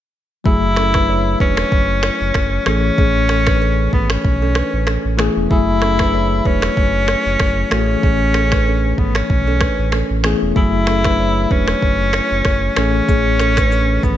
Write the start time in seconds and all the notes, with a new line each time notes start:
0.44 F#1 F#3 A3 E4 G#4, kick
0.76 C#4 A4, finger snap, cross-stick
0.94 D4 B4, finger snap, kick, cross-stick
1.09 E4 C#5
1.40 E1 C#4 D4 B4, kick
1.57 finger snap, cross-stick
1.72 F#1, kick
2.03 E4 C#5, finger snap, cross-stick
2.21 F#1
2.34 F#1, finger snap, kick, cross-stick
2.65 A1 E3 A3 C#4 G#4 A4, finger snap, cross-stick
2.98 A1 C#4 G#4, kick
3.29 C#4 A4, finger snap, cross-stick
3.47 D4 B4, finger snap, kick, cross-stick
3.62 C#4 A4
3.93 G#1 B3, kick
4.10 C#4, finger snap, cross-stick
4.25 B1, kick
4.42 C#4 A4
4.55 D4 B4, finger snap, cross-stick
4.73 A1
4.87 C#4 A4, finger snap, cross-stick
5.05 A1
5.18 E3 A3 B3 C#4 G#4, finger snap, cross-stick
5.36 E1
5.49 F#1 F#3 A3 E4 G#4, kick
5.82 C#4 A4, finger snap, cross-stick
5.99 D4 B4, finger snap, kick, cross-stick
6.14 E4 C#5
6.45 E1 C#4 D4 B4, kick
6.62 finger snap, cross-stick
6.77 F#1, kick
7.08 E4 C#5, finger snap, cross-stick
7.26 F#1
7.39 F#1, finger snap, kick, cross-stick
7.70 A1 E3 A3 C#4 F#4 A4, finger snap, cross-stick
7.79 G#4
8.03 A1 C#4 G#4, kick
8.34 C#4 A4, finger snap, cross-stick
8.52 D4 B4, finger snap, kick, cross-stick
8.67 C#4 A4
8.95 G#1 B3 C#4, kick
9.15 C#4, finger snap, cross-stick
9.30 B1, kick
9.47 C#4 A4
9.61 D4 B4, finger snap, kick, cross-stick
9.79 A1
9.92 C#4 A4, finger snap, cross-stick
10.10 A1
10.23 E3 A3 B3 C#4 G#4, finger snap, cross-stick
10.42 E1
10.55 F#1 F#3 A3 E4 G#4, kick
10.87 C#4 A4, finger snap, cross-stick
11.04 D4 B4, finger snap, kick, cross-stick
11.20 E4 C#5
11.51 E1 C#4 D4 B4, kick
11.68 finger snap, cross-stick
11.82 F#1, kick
12.13 E4 C#5, finger snap, cross-stick
12.31 F#1
12.45 F#1, finger snap, kick, cross-stick
12.76 A1 E3 A3 C#4 G#4 A4, finger snap, cross-stick
13.09 A1 C#4 G#4, kick, shaker
13.39 C#4 A4, finger snap, cross-stick, shaker
13.57 D4 B4, finger snap, kick, cross-stick, shaker
13.72 C#4 A4, shaker
14.03 G#1 B3, kick, shaker